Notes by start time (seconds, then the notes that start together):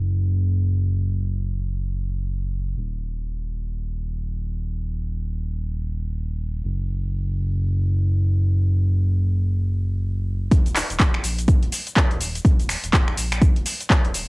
Already playing: F#1
2.77 D#1
6.64 F#1
10.51 D#1, kick, closed hi-hat, shaker
10.66 closed hi-hat, shaker
10.76 finger snap, clap, open hi-hat, shaker
10.90 D#1, closed hi-hat, shaker
11.00 kick, clap, closed hi-hat, shaker
11.14 finger snap
11.24 A#1, open hi-hat, shaker
11.39 closed hi-hat, shaker
11.48 kick, closed hi-hat, shaker
11.63 D#1, closed hi-hat
11.72 open hi-hat, shaker
11.87 closed hi-hat, shaker
11.96 kick, clap, closed hi-hat, shaker
12.11 D#1, closed hi-hat
12.21 open hi-hat, shaker
12.35 closed hi-hat, shaker
12.45 D#1, kick, closed hi-hat, shaker
12.60 closed hi-hat, shaker
12.69 finger snap, open hi-hat, shaker
12.84 D#1, closed hi-hat, shaker
12.93 kick, clap, closed hi-hat, shaker
13.08 finger snap
13.17 A#1, open hi-hat, shaker
13.32 finger snap, closed hi-hat, shaker
13.42 kick, closed hi-hat, shaker
13.56 D#1, closed hi-hat
13.66 open hi-hat, shaker
13.81 closed hi-hat, shaker
13.90 kick, clap, closed hi-hat, shaker
14.05 D#1, closed hi-hat
14.14 open hi-hat, shaker